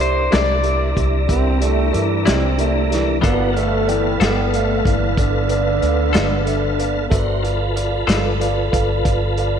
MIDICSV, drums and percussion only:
0, 0, Header, 1, 2, 480
1, 0, Start_track
1, 0, Tempo, 647249
1, 2394, Time_signature, 12, 3, 24, 8
1, 7116, End_track
2, 0, Start_track
2, 0, Title_t, "Drums"
2, 0, Note_on_c, 9, 42, 42
2, 74, Note_off_c, 9, 42, 0
2, 239, Note_on_c, 9, 42, 55
2, 246, Note_on_c, 9, 38, 93
2, 313, Note_off_c, 9, 42, 0
2, 320, Note_off_c, 9, 38, 0
2, 472, Note_on_c, 9, 42, 48
2, 546, Note_off_c, 9, 42, 0
2, 717, Note_on_c, 9, 36, 59
2, 721, Note_on_c, 9, 42, 47
2, 791, Note_off_c, 9, 36, 0
2, 795, Note_off_c, 9, 42, 0
2, 956, Note_on_c, 9, 36, 62
2, 957, Note_on_c, 9, 42, 60
2, 1031, Note_off_c, 9, 36, 0
2, 1032, Note_off_c, 9, 42, 0
2, 1199, Note_on_c, 9, 42, 53
2, 1273, Note_off_c, 9, 42, 0
2, 1440, Note_on_c, 9, 42, 54
2, 1515, Note_off_c, 9, 42, 0
2, 1680, Note_on_c, 9, 42, 70
2, 1688, Note_on_c, 9, 38, 84
2, 1754, Note_off_c, 9, 42, 0
2, 1762, Note_off_c, 9, 38, 0
2, 1918, Note_on_c, 9, 42, 56
2, 1992, Note_off_c, 9, 42, 0
2, 2167, Note_on_c, 9, 42, 60
2, 2174, Note_on_c, 9, 38, 30
2, 2241, Note_off_c, 9, 42, 0
2, 2249, Note_off_c, 9, 38, 0
2, 2400, Note_on_c, 9, 36, 86
2, 2401, Note_on_c, 9, 42, 69
2, 2474, Note_off_c, 9, 36, 0
2, 2475, Note_off_c, 9, 42, 0
2, 2645, Note_on_c, 9, 42, 47
2, 2719, Note_off_c, 9, 42, 0
2, 2883, Note_on_c, 9, 42, 54
2, 2958, Note_off_c, 9, 42, 0
2, 3121, Note_on_c, 9, 42, 64
2, 3129, Note_on_c, 9, 38, 82
2, 3196, Note_off_c, 9, 42, 0
2, 3203, Note_off_c, 9, 38, 0
2, 3364, Note_on_c, 9, 42, 48
2, 3439, Note_off_c, 9, 42, 0
2, 3600, Note_on_c, 9, 36, 66
2, 3609, Note_on_c, 9, 42, 47
2, 3674, Note_off_c, 9, 36, 0
2, 3683, Note_off_c, 9, 42, 0
2, 3837, Note_on_c, 9, 36, 70
2, 3839, Note_on_c, 9, 42, 57
2, 3912, Note_off_c, 9, 36, 0
2, 3913, Note_off_c, 9, 42, 0
2, 4074, Note_on_c, 9, 42, 51
2, 4148, Note_off_c, 9, 42, 0
2, 4319, Note_on_c, 9, 42, 48
2, 4393, Note_off_c, 9, 42, 0
2, 4554, Note_on_c, 9, 42, 60
2, 4561, Note_on_c, 9, 38, 87
2, 4628, Note_off_c, 9, 42, 0
2, 4635, Note_off_c, 9, 38, 0
2, 4797, Note_on_c, 9, 42, 44
2, 4871, Note_off_c, 9, 42, 0
2, 5040, Note_on_c, 9, 42, 51
2, 5114, Note_off_c, 9, 42, 0
2, 5277, Note_on_c, 9, 36, 85
2, 5278, Note_on_c, 9, 42, 68
2, 5351, Note_off_c, 9, 36, 0
2, 5352, Note_off_c, 9, 42, 0
2, 5522, Note_on_c, 9, 42, 45
2, 5596, Note_off_c, 9, 42, 0
2, 5761, Note_on_c, 9, 42, 53
2, 5835, Note_off_c, 9, 42, 0
2, 5998, Note_on_c, 9, 42, 70
2, 6005, Note_on_c, 9, 38, 84
2, 6072, Note_off_c, 9, 42, 0
2, 6079, Note_off_c, 9, 38, 0
2, 6239, Note_on_c, 9, 42, 53
2, 6314, Note_off_c, 9, 42, 0
2, 6475, Note_on_c, 9, 36, 62
2, 6480, Note_on_c, 9, 42, 50
2, 6549, Note_off_c, 9, 36, 0
2, 6554, Note_off_c, 9, 42, 0
2, 6713, Note_on_c, 9, 36, 62
2, 6714, Note_on_c, 9, 42, 58
2, 6787, Note_off_c, 9, 36, 0
2, 6788, Note_off_c, 9, 42, 0
2, 6952, Note_on_c, 9, 42, 50
2, 7026, Note_off_c, 9, 42, 0
2, 7116, End_track
0, 0, End_of_file